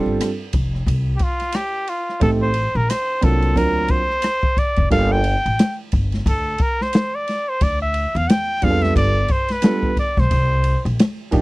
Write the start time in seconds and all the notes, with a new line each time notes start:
Already playing: G3 C4 D4 F4 A4
0.06 G1
0.21 cross-stick, hi-hat pedal, ride
0.53 F1, kick, ride
0.75 cross-stick
0.87 C2, kick, ride
1.17 G4, kick, ride
1.23 F4
1.40 cross-stick, ride
1.52 G4, cross-stick, hi-hat pedal, ride
1.88 F4, ride
2.09 cross-stick
2.20 A1 A3 C4 D#4 G4 A4, kick, ride
2.42 C5
2.54 ride
2.75 A#1 A#4
2.90 C5, cross-stick, hi-hat pedal, ride
3.21 C2 F#3 A#3 C4 D4 F4 A4, kick, ride
3.42 ride
3.55 D2 F#3 C4 D4 F4 A#4, kick, ride
3.88 C5, kick, ride
4.10 cross-stick
4.22 cross-stick, hi-hat pedal, ride
4.43 kick
4.57 D5, kick, cross-stick, ride
4.76 F1, kick, ride
4.90 G1 G3 A#3 D4 F4 A4 F5, kick, ride
5.12 G5
5.24 ride
5.46 A1, ride
5.59 snare, hi-hat pedal, ride
5.92 G1, kick, ride
6.12 snare, ride
6.26 D2 A4, kick, ride
6.58 A#4, kick, ride
6.81 C5, snare
6.93 snare, hi-hat pedal, ride
7.15 D5
7.28 snare, ride
7.49 C5
7.61 D2 D5, kick, ride
7.82 E5
7.94 ride
8.15 E2 F5, ride
8.30 G5, snare, hi-hat pedal, ride
8.62 F2 G3 B3 D4 F4 G#4 F5, kick, ride
8.71 A4
8.82 E5, snare, ride
8.96 G1 D5, kick, ride
9.28 C5, kick, ride
9.48 B4, snare, ride
9.62 G3 B3 D4 F4 A4, snare, hi-hat pedal, ride
9.83 kick
9.97 D5, kick, ride
10.17 B1 C5, kick, snare
10.31 C2, kick, ride
10.64 ride
10.85 A#1, ride
10.99 snare, hi-hat pedal, ride
11.31 A1 F3 A#3 D4 D#4 G4, kick, ride